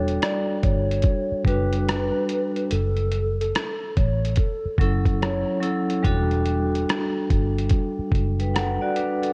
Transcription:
Already playing: fingered electric bass E1, vibraphone G3 D4 F#4 A4, soft synth lead C#5
0.08 closed hi-hat
0.22 soft synth lead D5, cross-stick, closed hi-hat
0.63 fingered electric bass G1, soft synth lead C#5, kick, closed hi-hat
0.91 closed hi-hat
1.02 kick, closed hi-hat
1.32 muted fingered electric bass stroke
1.45 fingered electric bass F#1, vibraphone G3 D4 F#4, soft synth lead B4, kick, closed hi-hat
1.49 vibraphone B4
1.73 closed hi-hat
1.89 cross-stick, closed hi-hat
2.29 closed hi-hat
2.56 closed hi-hat
2.71 fingered electric bass F#1, soft synth lead A4, closed hi-hat
2.97 closed hi-hat
3.12 closed hi-hat
3.40 soft synth lead A4, closed hi-hat
3.55 cross-stick, closed hi-hat
3.97 fingered electric bass A1, soft synth lead C#5, kick, closed hi-hat
4.25 closed hi-hat
4.36 soft synth lead A4, kick, closed hi-hat
4.66 muted fingered electric bass stroke
4.78 fingered electric bass F#1, vibraphone F#3 C#4 E4, soft synth lead A4, kick, closed hi-hat
4.83 vibraphone A4
5.06 kick, closed hi-hat
5.22 soft synth lead C#5, cross-stick, closed hi-hat
5.60 vibraphone F#3 C#4 E4 A4, closed hi-hat
5.90 closed hi-hat
6.03 fingered electric bass E1, vibraphone G3 D4 F#4 A4, kick, closed hi-hat
6.31 closed hi-hat
6.46 closed hi-hat
6.75 closed hi-hat
6.89 cross-stick, closed hi-hat
7.30 fingered electric bass G1, kick, closed hi-hat
7.58 closed hi-hat
7.70 kick, closed hi-hat
7.99 muted fingered electric bass stroke
8.12 fingered electric bass F#1, kick, closed hi-hat
8.39 vibraphone B4 G5, closed hi-hat
8.54 vibraphone A4 F#5, cross-stick, closed hi-hat
8.81 vibraphone F#4 D5
8.96 vibraphone D4 B4, closed hi-hat
9.23 vibraphone A4, closed hi-hat

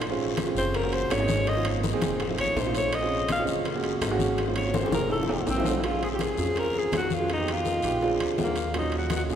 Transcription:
Already playing: upright bass A#1
0.01 high bongo, high conga, high timbale, long guiro
0.10 grand piano G#3 C4 C#4 F4
0.19 high conga
0.37 high bongo, high conga, high timbale, low timbale, short guiro
0.46 grand piano G#3 C4 C#4 F4
0.55 upright bass F#1, alto saxophone C5, high conga, short guiro
0.74 alto saxophone A#4, high bongo, high conga, high timbale, long guiro
0.83 grand piano G#3 A#3 C#4 F#4
0.93 alto saxophone C5, high conga, high timbale
1.10 upright bass G#1, alto saxophone C#5, high bongo, low bongo, high conga, high timbale, low timbale, short guiro
1.20 grand piano G#3 A#3 C#4 D#4
1.28 high conga, short guiro
1.47 alto saxophone D#5, high bongo, high conga, high timbale, long guiro
1.56 grand piano A#3 C4 D#4 F4
1.65 high conga, high timbale
1.83 high bongo, high conga, low timbale, short guiro
1.93 grand piano A#3 C4 D#4 G#4
2.01 upright bass F1, high bongo, high conga, high timbale, short guiro
2.20 high bongo, high conga, high timbale, long guiro
2.29 grand piano A3 C4 D#4 F4
2.37 upright bass A1, alto saxophone C#5, high bongo, high conga, high timbale
2.56 upright bass A#1, alto saxophone C5, high bongo, low bongo, high conga, low timbale, short guiro
2.66 grand piano A3 C4 D#4 F4
2.75 alto saxophone C#5, high bongo, high timbale, short guiro
2.92 alto saxophone D#5, high bongo, high conga, high timbale, long guiro
3.02 grand piano G#3 C4 C#4 F4
3.11 high conga
3.29 alto saxophone F5, high bongo, high conga, high timbale, low timbale, short guiro
3.39 grand piano G#3 C4 C#4 F4
3.47 upright bass F#1, high conga, short guiro
3.65 high bongo, high conga, high timbale, long guiro
3.75 grand piano G#3 A#3 C#4 F#4
3.83 high conga, high timbale
4.01 upright bass G#1, high bongo, low bongo, high conga, high timbale, low timbale, short guiro
4.11 grand piano G#3 A#3 C#4 F#4
4.19 high conga, short guiro
4.38 high bongo, high conga, high timbale, long guiro
4.47 grand piano A#3 C4 D#4 F4
4.56 alto saxophone C#5, high conga, high timbale
4.74 alto saxophone C5, high bongo, high conga, low timbale, short guiro
4.83 grand piano A#3 C4 D#4 G#4, high bongo
4.92 upright bass F1, alto saxophone A#4, high conga, high timbale, short guiro
5.10 alto saxophone A4, high bongo, high conga, high timbale, long guiro
5.20 grand piano A3 C4 D#4 F4, low bongo
5.28 high conga, low timbale
5.46 upright bass A#1, alto saxophone C4, low bongo, high conga, low timbale, short guiro
5.56 grand piano A3 C4 D#4 F4, low bongo
5.64 high conga, low timbale, short guiro
5.71 low bongo
5.80 grand piano G#3 C4 C#4, alto saxophone E4, high bongo, high conga, high timbale, long guiro
5.84 grand piano F4, alto saxophone F4
6.01 alto saxophone G#4, high conga, high timbale
6.14 alto saxophone G4
6.19 alto saxophone G#4, high bongo, high conga, high timbale, low timbale, short guiro
6.37 upright bass F2, grand piano G#3 C4 C#4 F4, high conga, short guiro
6.48 grand piano G#3 C4 C#4 F4
6.56 alto saxophone A#4, high bongo, high conga, high timbale, long guiro
6.74 high conga
6.78 alto saxophone G#4
6.92 upright bass F2, high bongo, low bongo, high conga, high timbale, low timbale, short guiro
6.97 alto saxophone F#4
7.10 alto saxophone F4, high conga, short guiro
7.19 grand piano G#3 C4 C#4 F4
7.28 high bongo, high conga, high timbale, long guiro
7.33 alto saxophone D#4
7.38 grand piano G#3 B3 D#4 G4
7.47 high bongo, high conga, high timbale
7.52 alto saxophone F4
7.65 high bongo, high conga, low timbale, short guiro
7.82 upright bass A#1, grand piano G#3 B3 D#4 G4, high conga, high timbale, short guiro
8.01 grand piano G#3 C4 D4 F4, high bongo, high conga, long guiro
8.20 upright bass D2, high bongo, high conga, high timbale
8.38 upright bass D#2, high bongo, low bongo, high conga, low timbale, short guiro
8.43 alto saxophone A#3
8.56 high bongo, high timbale, short guiro
8.74 grand piano F#3 A#3 C#4 F4, high bongo, high conga, high timbale, long guiro
8.78 alto saxophone D#4
8.92 high conga, high timbale
8.98 alto saxophone F#4
9.10 high bongo, high conga, high timbale, low timbale, short guiro
9.16 alto saxophone F#4
9.28 upright bass A#1, grand piano F#3 A#3 C#4 F4, high conga, short guiro

